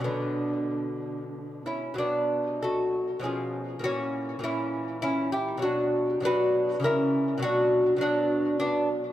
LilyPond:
<<
  \new Staff \with { instrumentName = "Lute" } { \time 3/4 \key b \minor \tempo 4 = 100 <d b>2~ <d b>8 <cis' e'>8 | <b d'>4 <fis' a'>4 <eis' gis'>4 | <cis' fis'>4 <cis' e'>4 <cis' e'>8 <e' g'>8 | <d' fis'>4 <fis' b'>4 <e' ais'>4 |
<d' fis'>4 <b d'>4 <b d'>8 r8 | }
  \new Staff \with { instrumentName = "Lute" } { \clef bass \time 3/4 \key b \minor <b, fis>2. | <b, fis>2 <b, eis cis'>4 | <ais, e>4 <ais, e>2 | <b, fis>4 <b, fis d'>4 <cis e cis'>4 |
<b, fis>4 <b, fis>2 | }
>>